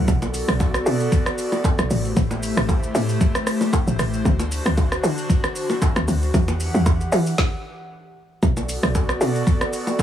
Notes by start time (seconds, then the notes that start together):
0.08 B1 B3 F#4 A4 D5, kick, low conga, shaker
0.22 low bongo, shaker
0.34 open hi-hat, shaker
0.48 B1, cross-stick, shaker
0.60 kick, high bongo, shaker
0.74 cross-stick, shaker
0.86 B2, open hi-hat, shaker
1.00 shaker
1.12 kick, low conga, shaker
1.26 cross-stick, shaker
1.38 open hi-hat, shaker
1.52 low bongo, shaker
1.64 kick, high bongo, shaker
1.79 B1, cross-stick, shaker
1.90 A1 A3 E4 G4 C5, open hi-hat, low conga, shaker
2.05 shaker
2.17 A1, kick, low conga, shaker
2.31 low bongo, shaker
2.43 open hi-hat, shaker
2.57 A1, cross-stick, shaker
2.69 kick, high bongo, shaker
2.83 shaker
2.95 A2, open hi-hat, shaker
3.09 shaker
3.21 kick, low conga, shaker
3.35 cross-stick, shaker
3.47 cross-stick, open hi-hat, shaker
3.61 low bongo, shaker
3.73 kick, high bongo, shaker
3.87 A1, shaker
3.99 A1, cross-stick, open hi-hat, low conga, shaker
4.13 shaker
4.25 D2 D3 D4 F#4, kick, low conga, shaker
4.39 low bongo, shaker
4.52 open hi-hat, shaker
4.66 D2, cross-stick, shaker
4.77 kick, high bongo, shaker
4.92 cross-stick, shaker
5.03 D3, open hi-hat, shaker
5.18 shaker
5.29 kick, low conga, shaker
5.44 cross-stick, shaker
5.56 open hi-hat, shaker
5.70 low bongo, shaker
5.82 kick, high bongo, shaker
5.96 D2, cross-stick, shaker
6.08 D2, open hi-hat, low conga, shaker
6.22 shaker
6.34 E2 E3 G4 F#5, kick, low conga, shaker
6.48 low bongo, shaker
6.60 open hi-hat, shaker
6.74 E2, shaker
6.86 kick, high bongo, shaker
7.01 shaker
7.12 E3, open hi-hat, shaker
7.26 shaker
7.38 kick, snare
8.43 B1 B3 F#4 A4 D5, kick, low conga, shaker
8.57 low bongo, shaker
8.69 open hi-hat, shaker
8.83 B1, cross-stick, shaker
8.95 kick, high bongo, shaker
9.09 cross-stick, shaker
9.21 B2, open hi-hat, shaker
9.35 shaker
9.47 kick, low conga, shaker
9.61 cross-stick, shaker
9.73 open hi-hat, shaker
9.87 low bongo, shaker
9.99 kick, high bongo, shaker